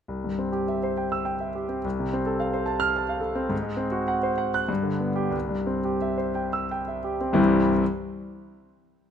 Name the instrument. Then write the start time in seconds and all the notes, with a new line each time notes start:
grand piano
0.08 C2
0.24 G2
0.39 C4
0.52 G4
0.68 E5
0.83 C5
0.97 G5
1.12 E6
1.25 G5
1.40 E5
1.55 G4
1.69 C4
1.84 C2
1.99 C3
2.13 C4
2.26 A4
2.40 F5
2.53 C5
2.66 A5
2.80 F6
2.96 A5
3.09 F5
3.21 A4
3.35 C4
3.49 G#2
3.62 G#3
3.77 C4
3.91 F#4
4.08 F#5
4.23 C5
4.38 F#5
4.54 F#6
4.69 G2
4.83 D3
5.00 B3
5.16 G4
5.30 C2
5.49 G2
5.67 C4
5.85 G4
6.02 E5
6.18 C5
6.35 G5
6.53 E6
6.71 G5
6.88 E5
7.04 G4
7.21 C4
7.33 C2 G2 E3 G3 C4 E4